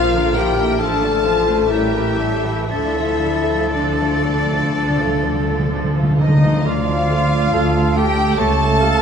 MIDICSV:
0, 0, Header, 1, 12, 480
1, 0, Start_track
1, 0, Key_signature, -1, "minor"
1, 0, Tempo, 848656
1, 450, Tempo, 909091
1, 930, Tempo, 1016949
1, 1399, Time_signature, 4, 2, 24, 8
1, 2370, Tempo, 952381
1, 3330, Tempo, 849858
1, 4662, End_track
2, 0, Start_track
2, 0, Title_t, "Flute"
2, 0, Program_c, 0, 73
2, 0, Note_on_c, 0, 89, 59
2, 434, Note_off_c, 0, 89, 0
2, 441, Note_on_c, 0, 89, 48
2, 916, Note_off_c, 0, 89, 0
2, 929, Note_on_c, 0, 91, 53
2, 1401, Note_on_c, 0, 93, 47
2, 1408, Note_off_c, 0, 91, 0
2, 2957, Note_off_c, 0, 93, 0
2, 3098, Note_on_c, 0, 75, 51
2, 3335, Note_on_c, 0, 77, 60
2, 3343, Note_off_c, 0, 75, 0
2, 4073, Note_on_c, 0, 79, 63
2, 4081, Note_off_c, 0, 77, 0
2, 4302, Note_off_c, 0, 79, 0
2, 4305, Note_on_c, 0, 81, 66
2, 4662, Note_off_c, 0, 81, 0
2, 4662, End_track
3, 0, Start_track
3, 0, Title_t, "Violin section"
3, 0, Program_c, 1, 48
3, 0, Note_on_c, 1, 77, 101
3, 203, Note_off_c, 1, 77, 0
3, 207, Note_on_c, 1, 79, 77
3, 445, Note_on_c, 1, 81, 78
3, 451, Note_off_c, 1, 79, 0
3, 926, Note_on_c, 1, 76, 65
3, 928, Note_off_c, 1, 81, 0
3, 1389, Note_off_c, 1, 76, 0
3, 1394, Note_on_c, 1, 76, 71
3, 1883, Note_off_c, 1, 76, 0
3, 1900, Note_on_c, 1, 74, 66
3, 2854, Note_off_c, 1, 74, 0
3, 3099, Note_on_c, 1, 75, 72
3, 3315, Note_off_c, 1, 75, 0
3, 3328, Note_on_c, 1, 77, 75
3, 4065, Note_off_c, 1, 77, 0
3, 4065, Note_on_c, 1, 79, 94
3, 4298, Note_on_c, 1, 81, 84
3, 4299, Note_off_c, 1, 79, 0
3, 4662, Note_off_c, 1, 81, 0
3, 4662, End_track
4, 0, Start_track
4, 0, Title_t, "Cor anglais"
4, 0, Program_c, 2, 69
4, 0, Note_on_c, 2, 72, 59
4, 205, Note_on_c, 2, 70, 62
4, 213, Note_off_c, 2, 72, 0
4, 447, Note_on_c, 2, 69, 54
4, 455, Note_off_c, 2, 70, 0
4, 684, Note_off_c, 2, 69, 0
4, 687, Note_on_c, 2, 72, 55
4, 931, Note_on_c, 2, 70, 49
4, 938, Note_off_c, 2, 72, 0
4, 1159, Note_on_c, 2, 69, 55
4, 1166, Note_off_c, 2, 70, 0
4, 1393, Note_off_c, 2, 69, 0
4, 1396, Note_on_c, 2, 69, 51
4, 3130, Note_off_c, 2, 69, 0
4, 3328, Note_on_c, 2, 74, 68
4, 3799, Note_off_c, 2, 74, 0
4, 3823, Note_on_c, 2, 69, 65
4, 4305, Note_on_c, 2, 73, 63
4, 4314, Note_off_c, 2, 69, 0
4, 4534, Note_off_c, 2, 73, 0
4, 4538, Note_on_c, 2, 77, 67
4, 4662, Note_off_c, 2, 77, 0
4, 4662, End_track
5, 0, Start_track
5, 0, Title_t, "Trumpet section"
5, 0, Program_c, 3, 61
5, 3099, Note_on_c, 3, 63, 54
5, 3315, Note_off_c, 3, 63, 0
5, 3330, Note_on_c, 3, 65, 72
5, 4066, Note_off_c, 3, 65, 0
5, 4067, Note_on_c, 3, 67, 76
5, 4299, Note_off_c, 3, 67, 0
5, 4306, Note_on_c, 3, 69, 77
5, 4662, Note_off_c, 3, 69, 0
5, 4662, End_track
6, 0, Start_track
6, 0, Title_t, "Clarinet"
6, 0, Program_c, 4, 71
6, 0, Note_on_c, 4, 65, 85
6, 198, Note_off_c, 4, 65, 0
6, 202, Note_on_c, 4, 67, 62
6, 449, Note_on_c, 4, 69, 70
6, 457, Note_off_c, 4, 67, 0
6, 921, Note_off_c, 4, 69, 0
6, 924, Note_on_c, 4, 64, 58
6, 1225, Note_off_c, 4, 64, 0
6, 1401, Note_on_c, 4, 64, 66
6, 1900, Note_on_c, 4, 62, 49
6, 1907, Note_off_c, 4, 64, 0
6, 2854, Note_off_c, 4, 62, 0
6, 3095, Note_on_c, 4, 63, 51
6, 3331, Note_on_c, 4, 65, 66
6, 3339, Note_off_c, 4, 63, 0
6, 4068, Note_on_c, 4, 67, 66
6, 4076, Note_off_c, 4, 65, 0
6, 4307, Note_on_c, 4, 69, 81
6, 4316, Note_off_c, 4, 67, 0
6, 4662, Note_off_c, 4, 69, 0
6, 4662, End_track
7, 0, Start_track
7, 0, Title_t, "Cello section"
7, 0, Program_c, 5, 48
7, 0, Note_on_c, 5, 65, 55
7, 203, Note_on_c, 5, 64, 52
7, 206, Note_off_c, 5, 65, 0
7, 448, Note_on_c, 5, 62, 55
7, 449, Note_off_c, 5, 64, 0
7, 686, Note_off_c, 5, 62, 0
7, 690, Note_on_c, 5, 65, 52
7, 928, Note_on_c, 5, 67, 63
7, 931, Note_off_c, 5, 65, 0
7, 1389, Note_off_c, 5, 67, 0
7, 1399, Note_on_c, 5, 69, 61
7, 3095, Note_off_c, 5, 69, 0
7, 3329, Note_on_c, 5, 38, 71
7, 3765, Note_off_c, 5, 38, 0
7, 3825, Note_on_c, 5, 38, 68
7, 4249, Note_off_c, 5, 38, 0
7, 4305, Note_on_c, 5, 37, 68
7, 4662, Note_off_c, 5, 37, 0
7, 4662, End_track
8, 0, Start_track
8, 0, Title_t, "French horn section"
8, 0, Program_c, 6, 60
8, 0, Note_on_c, 6, 65, 78
8, 205, Note_off_c, 6, 65, 0
8, 208, Note_on_c, 6, 67, 66
8, 451, Note_off_c, 6, 67, 0
8, 457, Note_on_c, 6, 69, 75
8, 933, Note_off_c, 6, 69, 0
8, 935, Note_on_c, 6, 64, 60
8, 1321, Note_off_c, 6, 64, 0
8, 1401, Note_on_c, 6, 64, 64
8, 1887, Note_off_c, 6, 64, 0
8, 1896, Note_on_c, 6, 62, 46
8, 2852, Note_off_c, 6, 62, 0
8, 3095, Note_on_c, 6, 51, 55
8, 3313, Note_off_c, 6, 51, 0
8, 3329, Note_on_c, 6, 53, 67
8, 4062, Note_on_c, 6, 55, 66
8, 4065, Note_off_c, 6, 53, 0
8, 4298, Note_on_c, 6, 57, 87
8, 4302, Note_off_c, 6, 55, 0
8, 4662, Note_off_c, 6, 57, 0
8, 4662, End_track
9, 0, Start_track
9, 0, Title_t, "Violin section"
9, 0, Program_c, 7, 48
9, 0, Note_on_c, 7, 58, 55
9, 0, Note_on_c, 7, 65, 58
9, 82, Note_off_c, 7, 58, 0
9, 82, Note_off_c, 7, 65, 0
9, 93, Note_on_c, 7, 62, 49
9, 94, Note_on_c, 7, 70, 53
9, 207, Note_on_c, 7, 58, 51
9, 208, Note_off_c, 7, 62, 0
9, 209, Note_off_c, 7, 70, 0
9, 212, Note_on_c, 7, 65, 49
9, 327, Note_off_c, 7, 58, 0
9, 330, Note_off_c, 7, 65, 0
9, 330, Note_on_c, 7, 62, 52
9, 331, Note_on_c, 7, 70, 46
9, 452, Note_off_c, 7, 62, 0
9, 452, Note_off_c, 7, 70, 0
9, 462, Note_on_c, 7, 65, 57
9, 463, Note_on_c, 7, 57, 60
9, 566, Note_off_c, 7, 65, 0
9, 567, Note_off_c, 7, 57, 0
9, 573, Note_on_c, 7, 62, 48
9, 575, Note_on_c, 7, 69, 48
9, 690, Note_off_c, 7, 62, 0
9, 691, Note_off_c, 7, 69, 0
9, 697, Note_on_c, 7, 65, 50
9, 698, Note_on_c, 7, 57, 44
9, 813, Note_off_c, 7, 57, 0
9, 813, Note_off_c, 7, 65, 0
9, 820, Note_on_c, 7, 69, 46
9, 823, Note_on_c, 7, 62, 44
9, 935, Note_off_c, 7, 69, 0
9, 937, Note_off_c, 7, 62, 0
9, 941, Note_on_c, 7, 61, 42
9, 942, Note_on_c, 7, 57, 48
9, 1040, Note_off_c, 7, 57, 0
9, 1040, Note_off_c, 7, 61, 0
9, 1049, Note_on_c, 7, 58, 41
9, 1051, Note_on_c, 7, 64, 45
9, 1160, Note_off_c, 7, 58, 0
9, 1161, Note_off_c, 7, 64, 0
9, 1162, Note_on_c, 7, 57, 35
9, 1162, Note_on_c, 7, 61, 37
9, 1278, Note_off_c, 7, 57, 0
9, 1278, Note_off_c, 7, 61, 0
9, 1284, Note_on_c, 7, 58, 38
9, 1287, Note_on_c, 7, 64, 39
9, 1404, Note_off_c, 7, 58, 0
9, 1405, Note_off_c, 7, 64, 0
9, 1412, Note_on_c, 7, 62, 40
9, 1413, Note_off_c, 7, 62, 0
9, 1413, Note_on_c, 7, 62, 51
9, 1524, Note_off_c, 7, 62, 0
9, 1528, Note_on_c, 7, 65, 43
9, 1529, Note_on_c, 7, 57, 43
9, 1652, Note_off_c, 7, 57, 0
9, 1652, Note_off_c, 7, 65, 0
9, 1653, Note_on_c, 7, 62, 37
9, 1775, Note_off_c, 7, 62, 0
9, 1779, Note_on_c, 7, 57, 34
9, 1779, Note_on_c, 7, 65, 34
9, 1898, Note_off_c, 7, 57, 0
9, 1898, Note_off_c, 7, 65, 0
9, 1901, Note_on_c, 7, 62, 40
9, 1903, Note_off_c, 7, 62, 0
9, 1903, Note_on_c, 7, 62, 46
9, 2011, Note_off_c, 7, 62, 0
9, 2020, Note_on_c, 7, 57, 42
9, 2021, Note_on_c, 7, 65, 40
9, 2132, Note_on_c, 7, 62, 41
9, 2133, Note_off_c, 7, 62, 0
9, 2133, Note_on_c, 7, 62, 42
9, 2138, Note_off_c, 7, 57, 0
9, 2138, Note_off_c, 7, 65, 0
9, 2252, Note_off_c, 7, 62, 0
9, 2256, Note_on_c, 7, 65, 38
9, 2257, Note_on_c, 7, 57, 37
9, 2368, Note_on_c, 7, 62, 41
9, 2369, Note_off_c, 7, 62, 0
9, 2369, Note_on_c, 7, 62, 44
9, 2371, Note_off_c, 7, 65, 0
9, 2372, Note_off_c, 7, 57, 0
9, 2483, Note_off_c, 7, 62, 0
9, 2491, Note_on_c, 7, 65, 38
9, 2494, Note_on_c, 7, 57, 38
9, 2612, Note_off_c, 7, 65, 0
9, 2612, Note_on_c, 7, 62, 38
9, 2614, Note_off_c, 7, 57, 0
9, 2614, Note_off_c, 7, 62, 0
9, 2614, Note_on_c, 7, 62, 42
9, 2731, Note_on_c, 7, 65, 37
9, 2732, Note_on_c, 7, 57, 38
9, 2733, Note_off_c, 7, 62, 0
9, 2852, Note_off_c, 7, 57, 0
9, 2852, Note_off_c, 7, 65, 0
9, 2852, Note_on_c, 7, 62, 34
9, 2964, Note_off_c, 7, 62, 0
9, 2973, Note_on_c, 7, 57, 38
9, 2973, Note_on_c, 7, 65, 37
9, 3094, Note_on_c, 7, 62, 31
9, 3095, Note_off_c, 7, 65, 0
9, 3096, Note_off_c, 7, 57, 0
9, 3096, Note_off_c, 7, 62, 0
9, 3096, Note_on_c, 7, 62, 32
9, 3096, Note_on_c, 7, 75, 52
9, 3214, Note_on_c, 7, 57, 34
9, 3214, Note_on_c, 7, 65, 44
9, 3216, Note_off_c, 7, 62, 0
9, 3313, Note_off_c, 7, 75, 0
9, 3323, Note_on_c, 7, 77, 69
9, 3329, Note_off_c, 7, 57, 0
9, 3329, Note_off_c, 7, 65, 0
9, 4062, Note_off_c, 7, 77, 0
9, 4063, Note_on_c, 7, 79, 72
9, 4297, Note_on_c, 7, 81, 93
9, 4302, Note_off_c, 7, 79, 0
9, 4662, Note_off_c, 7, 81, 0
9, 4662, End_track
10, 0, Start_track
10, 0, Title_t, "Viola section"
10, 0, Program_c, 8, 48
10, 0, Note_on_c, 8, 53, 54
10, 76, Note_off_c, 8, 53, 0
10, 84, Note_on_c, 8, 50, 50
10, 84, Note_on_c, 8, 58, 47
10, 204, Note_off_c, 8, 50, 0
10, 204, Note_off_c, 8, 58, 0
10, 204, Note_on_c, 8, 53, 51
10, 205, Note_off_c, 8, 53, 0
10, 205, Note_on_c, 8, 53, 51
10, 320, Note_on_c, 8, 50, 46
10, 322, Note_on_c, 8, 58, 50
10, 326, Note_off_c, 8, 53, 0
10, 445, Note_on_c, 8, 53, 47
10, 447, Note_off_c, 8, 50, 0
10, 448, Note_off_c, 8, 53, 0
10, 448, Note_off_c, 8, 58, 0
10, 448, Note_on_c, 8, 53, 52
10, 558, Note_off_c, 8, 53, 0
10, 568, Note_on_c, 8, 50, 50
10, 569, Note_on_c, 8, 57, 49
10, 680, Note_on_c, 8, 53, 43
10, 681, Note_off_c, 8, 53, 0
10, 681, Note_on_c, 8, 53, 49
10, 687, Note_off_c, 8, 50, 0
10, 687, Note_off_c, 8, 57, 0
10, 804, Note_on_c, 8, 57, 44
10, 805, Note_off_c, 8, 53, 0
10, 806, Note_on_c, 8, 50, 45
10, 922, Note_off_c, 8, 57, 0
10, 928, Note_on_c, 8, 55, 48
10, 929, Note_off_c, 8, 50, 0
10, 929, Note_on_c, 8, 57, 48
10, 1033, Note_off_c, 8, 55, 0
10, 1033, Note_off_c, 8, 57, 0
10, 1041, Note_on_c, 8, 57, 45
10, 1043, Note_on_c, 8, 52, 47
10, 1150, Note_off_c, 8, 57, 0
10, 1154, Note_on_c, 8, 55, 43
10, 1156, Note_on_c, 8, 57, 40
10, 1157, Note_off_c, 8, 52, 0
10, 1268, Note_off_c, 8, 57, 0
10, 1274, Note_off_c, 8, 55, 0
10, 1274, Note_on_c, 8, 57, 37
10, 1275, Note_on_c, 8, 52, 38
10, 1399, Note_off_c, 8, 52, 0
10, 1399, Note_off_c, 8, 57, 0
10, 1401, Note_on_c, 8, 53, 43
10, 1402, Note_on_c, 8, 50, 44
10, 1518, Note_off_c, 8, 50, 0
10, 1518, Note_off_c, 8, 53, 0
10, 1529, Note_on_c, 8, 50, 41
10, 1530, Note_on_c, 8, 53, 40
10, 1644, Note_off_c, 8, 50, 0
10, 1646, Note_off_c, 8, 53, 0
10, 1650, Note_on_c, 8, 50, 37
10, 1651, Note_on_c, 8, 53, 43
10, 1766, Note_off_c, 8, 50, 0
10, 1767, Note_off_c, 8, 53, 0
10, 1772, Note_on_c, 8, 50, 35
10, 1773, Note_on_c, 8, 53, 40
10, 1889, Note_off_c, 8, 50, 0
10, 1889, Note_off_c, 8, 53, 0
10, 1895, Note_on_c, 8, 50, 41
10, 1895, Note_on_c, 8, 53, 43
10, 2007, Note_off_c, 8, 50, 0
10, 2007, Note_off_c, 8, 53, 0
10, 2012, Note_on_c, 8, 50, 37
10, 2013, Note_on_c, 8, 53, 36
10, 2125, Note_off_c, 8, 50, 0
10, 2126, Note_off_c, 8, 53, 0
10, 2130, Note_on_c, 8, 50, 43
10, 2132, Note_on_c, 8, 53, 40
10, 2245, Note_off_c, 8, 50, 0
10, 2246, Note_off_c, 8, 53, 0
10, 2251, Note_on_c, 8, 50, 41
10, 2252, Note_on_c, 8, 53, 34
10, 2361, Note_off_c, 8, 50, 0
10, 2361, Note_off_c, 8, 53, 0
10, 2366, Note_on_c, 8, 53, 44
10, 2367, Note_on_c, 8, 50, 43
10, 2480, Note_off_c, 8, 53, 0
10, 2482, Note_off_c, 8, 50, 0
10, 2486, Note_on_c, 8, 53, 42
10, 2489, Note_on_c, 8, 50, 40
10, 2605, Note_off_c, 8, 50, 0
10, 2605, Note_off_c, 8, 53, 0
10, 2611, Note_on_c, 8, 50, 37
10, 2611, Note_on_c, 8, 53, 37
10, 2721, Note_off_c, 8, 50, 0
10, 2723, Note_off_c, 8, 53, 0
10, 2727, Note_on_c, 8, 50, 41
10, 2729, Note_on_c, 8, 53, 40
10, 2840, Note_off_c, 8, 50, 0
10, 2840, Note_off_c, 8, 53, 0
10, 2846, Note_on_c, 8, 50, 39
10, 2846, Note_on_c, 8, 53, 45
10, 2961, Note_off_c, 8, 50, 0
10, 2961, Note_off_c, 8, 53, 0
10, 2967, Note_on_c, 8, 53, 40
10, 2968, Note_on_c, 8, 50, 36
10, 3084, Note_off_c, 8, 53, 0
10, 3086, Note_off_c, 8, 50, 0
10, 3090, Note_on_c, 8, 53, 34
10, 3092, Note_on_c, 8, 50, 34
10, 3205, Note_off_c, 8, 50, 0
10, 3206, Note_off_c, 8, 53, 0
10, 3211, Note_on_c, 8, 50, 35
10, 3212, Note_on_c, 8, 53, 32
10, 3325, Note_on_c, 8, 57, 57
10, 3326, Note_on_c, 8, 65, 54
10, 3328, Note_off_c, 8, 50, 0
10, 3328, Note_off_c, 8, 53, 0
10, 3370, Note_off_c, 8, 57, 0
10, 3370, Note_off_c, 8, 65, 0
10, 3575, Note_on_c, 8, 57, 47
10, 3575, Note_on_c, 8, 65, 46
10, 3620, Note_off_c, 8, 57, 0
10, 3620, Note_off_c, 8, 65, 0
10, 3821, Note_on_c, 8, 57, 54
10, 3823, Note_on_c, 8, 65, 54
10, 3867, Note_off_c, 8, 57, 0
10, 3868, Note_off_c, 8, 65, 0
10, 4063, Note_on_c, 8, 65, 55
10, 4064, Note_on_c, 8, 57, 51
10, 4109, Note_off_c, 8, 65, 0
10, 4110, Note_off_c, 8, 57, 0
10, 4301, Note_on_c, 8, 67, 53
10, 4304, Note_on_c, 8, 57, 58
10, 4346, Note_off_c, 8, 67, 0
10, 4350, Note_off_c, 8, 57, 0
10, 4538, Note_on_c, 8, 67, 47
10, 4539, Note_on_c, 8, 57, 48
10, 4583, Note_off_c, 8, 67, 0
10, 4584, Note_off_c, 8, 57, 0
10, 4662, End_track
11, 0, Start_track
11, 0, Title_t, "Timpani"
11, 0, Program_c, 10, 47
11, 1403, Note_on_c, 10, 50, 28
11, 1442, Note_off_c, 10, 50, 0
11, 1448, Note_on_c, 10, 50, 25
11, 1489, Note_off_c, 10, 50, 0
11, 1539, Note_on_c, 10, 50, 33
11, 1576, Note_off_c, 10, 50, 0
11, 1582, Note_on_c, 10, 50, 35
11, 1620, Note_off_c, 10, 50, 0
11, 1626, Note_on_c, 10, 50, 34
11, 1665, Note_off_c, 10, 50, 0
11, 1671, Note_on_c, 10, 50, 30
11, 1707, Note_off_c, 10, 50, 0
11, 1713, Note_on_c, 10, 50, 32
11, 1755, Note_off_c, 10, 50, 0
11, 1760, Note_on_c, 10, 50, 30
11, 1795, Note_off_c, 10, 50, 0
11, 1801, Note_on_c, 10, 50, 30
11, 1839, Note_off_c, 10, 50, 0
11, 1845, Note_on_c, 10, 50, 35
11, 1881, Note_off_c, 10, 50, 0
11, 1887, Note_on_c, 10, 50, 34
11, 1927, Note_off_c, 10, 50, 0
11, 1933, Note_on_c, 10, 50, 35
11, 1969, Note_off_c, 10, 50, 0
11, 1975, Note_on_c, 10, 50, 33
11, 2010, Note_off_c, 10, 50, 0
11, 2016, Note_on_c, 10, 50, 38
11, 2055, Note_off_c, 10, 50, 0
11, 2104, Note_on_c, 10, 50, 39
11, 2143, Note_off_c, 10, 50, 0
11, 2148, Note_on_c, 10, 50, 41
11, 2186, Note_off_c, 10, 50, 0
11, 2192, Note_on_c, 10, 50, 40
11, 2224, Note_off_c, 10, 50, 0
11, 2230, Note_on_c, 10, 50, 40
11, 2268, Note_off_c, 10, 50, 0
11, 2273, Note_on_c, 10, 50, 43
11, 2306, Note_off_c, 10, 50, 0
11, 2311, Note_on_c, 10, 50, 43
11, 2349, Note_off_c, 10, 50, 0
11, 2355, Note_on_c, 10, 50, 45
11, 2393, Note_off_c, 10, 50, 0
11, 2399, Note_on_c, 10, 50, 47
11, 2435, Note_off_c, 10, 50, 0
11, 2441, Note_on_c, 10, 50, 48
11, 2478, Note_off_c, 10, 50, 0
11, 2484, Note_on_c, 10, 50, 51
11, 2522, Note_off_c, 10, 50, 0
11, 2528, Note_on_c, 10, 50, 51
11, 2565, Note_off_c, 10, 50, 0
11, 2572, Note_on_c, 10, 50, 55
11, 2609, Note_off_c, 10, 50, 0
11, 2615, Note_on_c, 10, 50, 48
11, 2656, Note_off_c, 10, 50, 0
11, 2662, Note_on_c, 10, 50, 53
11, 2698, Note_off_c, 10, 50, 0
11, 2704, Note_on_c, 10, 50, 49
11, 2744, Note_off_c, 10, 50, 0
11, 2750, Note_on_c, 10, 50, 61
11, 2786, Note_off_c, 10, 50, 0
11, 2792, Note_on_c, 10, 50, 60
11, 2830, Note_off_c, 10, 50, 0
11, 2836, Note_on_c, 10, 50, 61
11, 2870, Note_off_c, 10, 50, 0
11, 2876, Note_on_c, 10, 50, 61
11, 2913, Note_off_c, 10, 50, 0
11, 2919, Note_on_c, 10, 50, 57
11, 2962, Note_off_c, 10, 50, 0
11, 2967, Note_on_c, 10, 50, 59
11, 3007, Note_off_c, 10, 50, 0
11, 3013, Note_on_c, 10, 50, 75
11, 3047, Note_off_c, 10, 50, 0
11, 3053, Note_on_c, 10, 50, 70
11, 3090, Note_off_c, 10, 50, 0
11, 3096, Note_on_c, 10, 50, 69
11, 3133, Note_off_c, 10, 50, 0
11, 3139, Note_on_c, 10, 50, 67
11, 3179, Note_off_c, 10, 50, 0
11, 3185, Note_on_c, 10, 50, 70
11, 3222, Note_off_c, 10, 50, 0
11, 3228, Note_on_c, 10, 50, 75
11, 3262, Note_off_c, 10, 50, 0
11, 3268, Note_on_c, 10, 50, 81
11, 3308, Note_off_c, 10, 50, 0
11, 4662, End_track
12, 0, Start_track
12, 0, Title_t, "Double bass section"
12, 0, Program_c, 11, 48
12, 0, Note_on_c, 11, 34, 63
12, 449, Note_off_c, 11, 34, 0
12, 449, Note_on_c, 11, 33, 58
12, 1398, Note_on_c, 11, 38, 51
12, 1399, Note_off_c, 11, 33, 0
12, 3220, Note_off_c, 11, 38, 0
12, 3330, Note_on_c, 11, 38, 53
12, 3766, Note_off_c, 11, 38, 0
12, 3826, Note_on_c, 11, 38, 57
12, 4249, Note_off_c, 11, 38, 0
12, 4305, Note_on_c, 11, 37, 64
12, 4662, Note_off_c, 11, 37, 0
12, 4662, End_track
0, 0, End_of_file